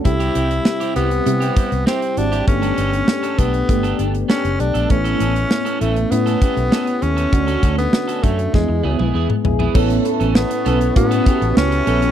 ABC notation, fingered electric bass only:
X:1
M:4/4
L:1/16
Q:1/4=99
K:Amix
V:1 name="Fingered electric bass" clef=bass
=C,,2 C,,2 z2 C,,2 =C,2 z C,, z2 ^G,,,2 | G,,,2 G,,,2 z2 B,,,2 G,,,2 G,,,2 z F,,, B,,, _B,,, | A,,,2 A,,,2 z2 A,,,2 A,,2 z B,,, z2 ^D,,2 | D,,2 D,,2 z2 F,,2 E,, E,, C,, B,,, E,, z _B,,,2 |
A,,,2 z A,,,2 z B,,,2 A,,2 z A,,, C,,2 _B,,,2 |]